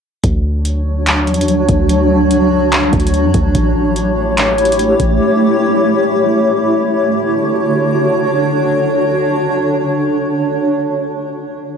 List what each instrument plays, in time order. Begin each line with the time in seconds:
0.24 808-style bass D2, ambient pad F#3 D4 F#4 C#5, kick, closed hi-hat
0.65 closed hi-hat
1.07 clap, closed hi-hat
1.27 808-style bass E2, closed hi-hat
1.34 closed hi-hat
1.41 closed hi-hat
1.48 808-style bass D2, closed hi-hat
1.68 808-style bass D2, kick, closed hi-hat
1.89 closed hi-hat
2.31 808-style bass C#2, closed hi-hat
2.72 clap, closed hi-hat
2.93 808-style bass D2, kick, closed hi-hat
3.00 closed hi-hat
3.07 closed hi-hat
3.14 closed hi-hat
3.24 808-style bass F#2
3.34 808-style bass D2, kick, closed hi-hat
3.55 808-style bass A1, ambient pad A3 E4 G4 C#5, kick, closed hi-hat
3.96 closed hi-hat
4.38 clap, closed hi-hat
4.58 closed hi-hat
4.65 closed hi-hat
4.72 closed hi-hat
4.79 closed hi-hat
5.00 808-style bass A1, kick, closed hi-hat
6.86 ambient pad D3 D4 F#4 C#5